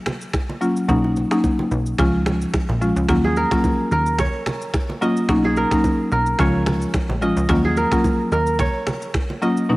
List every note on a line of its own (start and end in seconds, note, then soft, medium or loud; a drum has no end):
0.06 finger snap medium
0.06 cross-stick medium
0.06 low bongo medium
0.06 low conga medium
0.06 shaker medium
0.21 shaker medium
0.33 finger snap medium
0.33 kick medium
0.33 cross-stick loud
0.33 high bongo medium
0.33 shaker medium
0.49 low bongo medium
0.61 0.87 F#3 medium
0.61 0.87 A#3 medium
0.61 0.87 C#4 medium
0.61 0.87 F4 medium
0.61 shaker medium
0.76 shaker medium
0.88 1.25 B1 loud
0.88 1.10 F#3 medium
0.88 1.10 A#3 medium
0.88 1.10 C#4 medium
0.88 1.10 D#4 loud
0.88 kick loud
0.88 low conga medium
0.88 shaker medium
1.04 high bongo medium
1.16 low bongo medium
1.16 shaker medium
1.31 1.51 F#3 medium
1.31 1.51 A#3 medium
1.31 1.51 C#4 medium
1.31 1.51 D#4 medium
1.31 finger snap medium
1.31 cross-stick medium
1.31 shaker medium
1.44 kick medium
1.44 high bongo medium
1.44 shaker medium
1.59 low bongo medium
1.71 1.95 B1 medium
1.71 high bongo medium
1.71 shaker medium
1.86 shaker medium
1.98 2.46 C#2 loud
1.98 2.75 F3 medium
1.98 2.75 G#3 medium
1.98 2.76 C#4 medium
1.98 2.76 F4 medium
1.98 finger snap medium
1.98 kick loud
1.98 cross-stick loud
1.98 low conga medium
1.98 shaker medium
2.26 finger snap medium
2.26 cross-stick loud
2.26 low bongo medium
2.26 low conga medium
2.26 shaker medium
2.41 shaker medium
2.54 finger snap medium
2.54 kick medium
2.54 cross-stick loud
2.54 high bongo medium
2.54 shaker medium
2.69 2.92 A#1 medium
2.69 low bongo medium
2.81 3.07 F3 medium
2.81 3.07 G#3 medium
2.81 3.07 C#4 medium
2.81 3.07 F4 medium
2.81 shaker medium
2.96 3.07 C#2 medium
2.96 shaker medium
3.08 3.45 D#2 loud
3.08 3.30 F#3 medium
3.08 3.30 A#3 medium
3.08 3.30 C#4 medium
3.08 3.30 F4 loud
3.08 finger snap medium
3.08 kick loud
3.08 cross-stick loud
3.08 low conga medium
3.08 shaker medium
3.24 4.61 G#4 medium
3.24 high bongo medium
3.36 3.92 A#4 medium
3.36 shaker medium
3.51 3.71 F#3 medium
3.51 3.71 A#3 medium
3.51 3.72 C#4 medium
3.51 3.72 F4 medium
3.51 finger snap medium
3.51 kick medium
3.51 cross-stick medium
3.51 shaker medium
3.64 kick medium
3.64 high bongo medium
3.64 shaker medium
3.91 4.28 D#2 medium
3.91 5.19 A#4 medium
3.91 shaker medium
4.06 shaker medium
4.19 5.34 C#5 medium
4.19 finger snap medium
4.19 kick loud
4.19 cross-stick loud
4.19 low conga medium
4.19 shaker medium
4.46 finger snap medium
4.46 cross-stick medium
4.46 low bongo medium
4.46 low conga medium
4.46 shaker medium
4.62 shaker medium
4.74 finger snap medium
4.74 kick medium
4.74 cross-stick loud
4.74 high bongo medium
4.74 shaker medium
4.90 low bongo medium
5.01 5.27 F#3 medium
5.01 5.27 A#3 medium
5.01 5.27 C#4 medium
5.01 5.27 F4 medium
5.01 6.09 D#5 medium
5.01 shaker medium
5.17 shaker medium
5.29 5.65 B1 loud
5.29 5.50 F#3 medium
5.29 5.50 A#3 medium
5.29 5.50 C#4 medium
5.29 5.51 D#4 loud
5.29 finger snap medium
5.29 kick loud
5.29 cross-stick loud
5.29 low conga medium
5.29 shaker medium
5.44 6.81 G#4 medium
5.44 high bongo medium
5.57 6.12 A#4 medium
5.57 shaker medium
5.71 5.91 F#3 medium
5.71 5.92 A#3 medium
5.71 5.92 C#4 medium
5.71 5.92 D#4 medium
5.71 finger snap medium
5.71 kick medium
5.71 cross-stick medium
5.71 shaker medium
5.84 kick medium
5.84 high bongo medium
5.84 shaker medium
6.12 6.35 B1 medium
6.12 7.40 A#4 medium
6.12 shaker soft
6.26 shaker medium
6.39 6.86 C#2 loud
6.39 7.16 F3 medium
6.39 7.16 G#3 medium
6.39 7.16 C#4 medium
6.39 7.16 F4 loud
6.39 7.54 C#5 medium
6.39 finger snap medium
6.39 kick loud
6.39 cross-stick loud
6.39 low conga medium
6.39 shaker medium
6.66 finger snap medium
6.66 cross-stick medium
6.66 low bongo medium
6.66 low conga medium
6.66 shaker medium
6.82 shaker medium
6.94 finger snap medium
6.94 kick loud
6.94 cross-stick medium
6.94 high bongo medium
6.94 shaker medium
7.09 7.33 A#1 medium
7.09 low bongo medium
7.22 7.47 F3 medium
7.22 7.47 G#3 medium
7.22 7.47 C#4 medium
7.22 7.47 F4 medium
7.22 8.29 D#5 medium
7.22 shaker soft
7.37 7.47 C#2 medium
7.37 shaker medium
7.49 7.86 D#2 loud
7.49 7.70 F#3 medium
7.49 7.71 A#3 medium
7.49 7.71 C#4 medium
7.49 7.71 F4 loud
7.49 finger snap medium
7.49 kick loud
7.49 cross-stick medium
7.49 low conga medium
7.49 shaker medium
7.65 9.01 G#4 medium
7.65 high bongo medium
7.77 8.32 A#4 medium
7.77 shaker medium
7.92 8.12 F#3 medium
7.92 8.12 A#3 medium
7.92 8.12 C#4 medium
7.92 8.12 F4 medium
7.92 finger snap medium
7.92 kick medium
7.92 cross-stick medium
7.92 shaker medium
8.04 kick loud
8.04 high bongo medium
8.04 shaker medium
8.32 8.68 D#2 medium
8.32 9.60 A#4 medium
8.32 shaker medium
8.47 shaker medium
8.59 9.75 C#5 medium
8.59 finger snap medium
8.59 kick loud
8.59 cross-stick loud
8.59 low conga medium
8.59 shaker medium
8.87 finger snap medium
8.87 cross-stick loud
8.87 low bongo medium
8.87 low conga medium
8.87 shaker medium
9.02 shaker medium
9.14 finger snap medium
9.14 kick medium
9.14 cross-stick medium
9.14 high bongo medium
9.14 shaker medium
9.30 low bongo medium
9.42 9.63 F#3 medium
9.42 9.63 A#3 medium
9.42 9.63 C#4 medium
9.42 9.63 F4 medium
9.42 9.77 D#5 medium
9.42 shaker medium
9.57 shaker medium
9.69 9.77 B2 medium
9.69 9.77 F#3 medium
9.69 9.77 A#3 medium
9.69 9.77 C#4 medium
9.69 9.77 D#4 loud